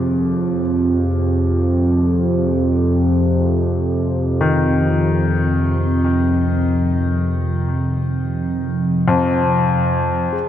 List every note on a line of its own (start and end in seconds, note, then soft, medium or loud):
0.00 0.60 D#2 medium
0.00 10.34 F2 medium
0.00 10.33 C3 medium
0.00 10.32 G#4 medium
4.41 10.49 D#3 medium
9.08 10.11 F2 medium
10.33 10.49 G#4 soft